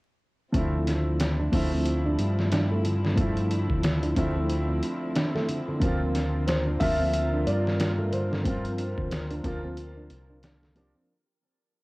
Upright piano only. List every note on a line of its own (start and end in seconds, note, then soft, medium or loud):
0.52 1.49 F3 medium
0.52 1.50 A3 medium
0.52 1.50 C4 medium
0.57 1.51 E4 medium
1.52 1.62 F3 medium
1.52 1.62 A3 medium
1.52 1.63 C4 medium
1.52 1.63 E4 medium
3.16 4.12 F3 medium
3.16 4.13 A3 medium
3.16 4.14 C4 medium
3.20 4.14 E4 medium
4.17 4.26 F3 medium
4.17 4.27 A3 medium
4.17 4.27 C4 medium
4.17 4.27 E4 medium
5.80 6.76 F3 medium
5.80 6.77 A#3 medium
5.80 6.78 C4 medium
5.84 6.79 F4 medium
6.81 6.90 F3 medium
6.81 6.90 A#3 medium
6.81 6.91 C4 medium
6.81 6.91 F4 loud
8.44 9.40 F3 medium
8.44 9.42 C4 medium
8.48 9.42 F4 medium
9.44 9.54 F3 medium
9.44 9.54 A#3 medium
9.44 9.54 C4 medium
9.44 9.55 F4 loud
10.75 11.05 F3 medium
10.75 11.06 A#3 medium
10.75 11.06 C4 medium
10.75 11.06 D4 medium